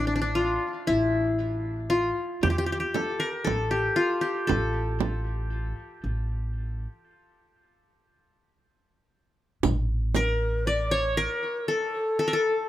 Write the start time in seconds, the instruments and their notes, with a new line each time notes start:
Already playing: upright bass A1, qanun E4
0.07 qanun D4
0.16 qanun D4
0.21 qanun D4
0.35 qanun F4
0.87 upright bass A1, qanun E4
1.90 qanun F4
2.43 upright bass E2, qanun G4, frame drum
2.50 qanun G4
2.58 qanun G4
2.66 qanun G4
2.72 qanun G4
2.80 qanun G4
2.94 qanun A4, frame drum
3.20 qanun A#4
3.44 upright bass A1, qanun A4, frame drum
3.71 qanun G4
3.96 qanun F4
4.21 qanun G4
4.47 upright bass A1, qanun A4, frame drum
5.01 frame drum
6.04 upright bass A1
9.63 upright bass A1, riq, frame drum, darbuka dum
10.15 ney A#4, qanun A#4, riq, frame drum
10.66 ney D5, qanun D5, riq
10.91 qanun C#5, ney C#5
11.17 qanun A#4, ney A#4
11.68 ney A4, qanun A4, riq, darbuka ka
12.19 qanun A4
12.28 qanun A#4
12.33 qanun A4